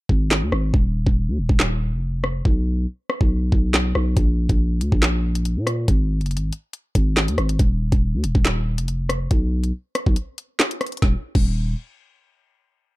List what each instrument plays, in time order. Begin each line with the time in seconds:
0.09 808-style bass G#1, kick
0.31 snare, clap
0.42 808-style bass D#2
0.52 808-style bass G#1, cross-stick
0.74 808-style bass D#1, kick
1.07 808-style bass D#1, kick
1.28 808-style bass D#2
1.38 808-style bass D#1
1.49 808-style bass D#1, kick
1.60 snare, clap
1.92 808-style bass F1
2.24 cross-stick
2.45 808-style bass B1, kick
3.10 cross-stick
3.21 808-style bass B1, kick
3.52 808-style bass B1, kick
3.74 snare, clap
3.95 808-style bass B1, cross-stick
4.17 808-style bass A#1, kick, closed hi-hat
4.49 808-style bass A#1, kick, closed hi-hat
4.81 808-style bass D2, closed hi-hat
4.92 808-style bass A#1, kick
5.02 snare, clap, closed hi-hat
5.35 closed hi-hat
5.45 closed hi-hat
5.56 808-style bass A#2
5.67 cross-stick, closed hi-hat
5.88 808-style bass G#1, kick, closed hi-hat
6.21 808-style bass F#1, closed hi-hat
6.26 closed hi-hat
6.31 closed hi-hat
6.37 808-style bass G#1, closed hi-hat
6.53 closed hi-hat
6.73 closed hi-hat
6.95 808-style bass G#1, kick, closed hi-hat
7.17 snare, clap
7.28 808-style bass D#2, closed hi-hat
7.38 808-style bass G#1, cross-stick, closed hi-hat
7.49 closed hi-hat
7.59 808-style bass D#1, kick, closed hi-hat
7.92 808-style bass D#1, kick, closed hi-hat
8.14 808-style bass D#2
8.24 808-style bass D#1, closed hi-hat
8.35 808-style bass D#1, kick
8.45 snare, clap, closed hi-hat
8.78 808-style bass F1, closed hi-hat
8.88 closed hi-hat
9.09 cross-stick, closed hi-hat
9.31 808-style bass B1, kick, closed hi-hat
9.64 closed hi-hat
9.95 cross-stick, closed hi-hat
10.06 808-style bass B1, kick
10.16 closed hi-hat
10.38 closed hi-hat
10.60 snare, clap
10.71 closed hi-hat
10.81 cross-stick, closed hi-hat
10.87 closed hi-hat
10.92 closed hi-hat
10.97 closed hi-hat
11.02 808-style bass D#1, kick, snare
11.35 808-style bass D#1, kick, crash